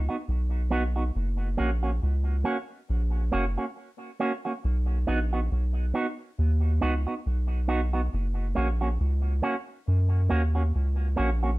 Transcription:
0.09 B3 D#4 F#4
0.28 B1
0.70 B3 D#4 F#4
0.96 B3 D#4 F#4
1.16 F#1
1.57 A#1 A#3 C#4 F#4
1.83 A#3 C#4 F#4
2.03 C#2
2.44 A#3 C#4 F#4
2.90 A#1
3.32 F#1 A#3 C#4 F#4
3.58 A#3 C#4 F#4
4.20 A#3 C#4 F#4
4.45 A#3 C#4 F#4
4.65 B1
5.07 A#1 B3 D#4 F#4
5.33 B3 D#4 F#4
5.52 B1
5.94 B3 D#4 F#4
6.39 D#2
6.81 C#2 B3 D#4 F#4
7.07 B3 D#4 F#4
7.26 B1
7.68 B3 D#4 F#4
7.93 B3 D#4 F#4
8.14 F#1
8.55 A#1 A#3 C#4 F#4
8.81 A#3 C#4 F#4
9.00 C#2
9.42 A#3 C#4 F#4
9.88 F#2
10.29 D#2 A#3 C#4 F#4
10.55 A#3 C#4 F#4
10.75 C#2
11.16 A#1 A#3 C#4 F#4
11.43 A#3 C#4 F#4

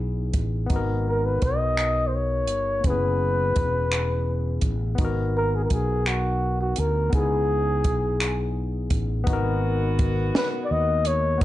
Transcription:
Already playing: B1 B3 D#4 E4 G#4
0.34 A1, kick, closed hi-hat
0.66 B3 D#4, kick, closed hi-hat
0.71 G#1 F#4
0.76 A#4
1.08 A#4
1.25 B4
1.42 B1 D#5, kick, closed hi-hat
1.77 finger snap, closed hi-hat
2.07 C5
2.15 C#5
2.47 G1, closed hi-hat
2.81 A#3 C#4, kick, closed hi-hat
2.85 F#1 B3 E4 B4
2.90 G#4
3.56 E1, kick, closed hi-hat
3.92 finger snap, closed hi-hat
4.61 A1, kick, closed hi-hat
4.95 B3 D#4, kick, closed hi-hat
4.99 G#1 F#4
5.05 A#4
5.37 A#4
5.55 G#4
5.65 A#4
5.70 B1 G#4, kick, closed hi-hat
6.06 F#4, finger snap, closed hi-hat
6.61 F#4
6.76 D2 A#4, closed hi-hat
7.10 C#2 B3 D#4, kick, closed hi-hat
7.15 E4 G#4
7.19 G#4
7.84 B1, kick, closed hi-hat
8.20 finger snap, closed hi-hat
8.90 A1, kick, closed hi-hat
9.24 D#3 B3 D#4 F#4, kick, closed hi-hat
9.28 G#1 F#4
9.33 A#4
9.99 kick, closed hi-hat
10.35 B4, snare, closed hi-hat
10.64 D5
10.71 D#2 D#5
11.05 C#5, closed hi-hat
11.38 F3 B3 C#4 D#4 G#4, kick, closed hi-hat

